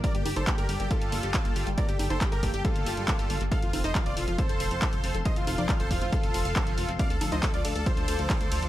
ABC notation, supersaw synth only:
X:1
M:4/4
L:1/16
Q:1/4=138
K:Gm
V:1 name="Supersaw synth"
[Bd] G G [Ac] G [GB] G G [FA]6- [FA] z | [Bd] G G [Ac] z [GB] G G [FA]6- [FA] z | [Af] F F [ce] F [Fd] F F [Ac]6- [Ac] z | [ce] F F [Fd] F [Ac] F F [FA]6- [FA] z |
[df] A A [ce] A [Fd] A A [Ac]6- [Ac] z |]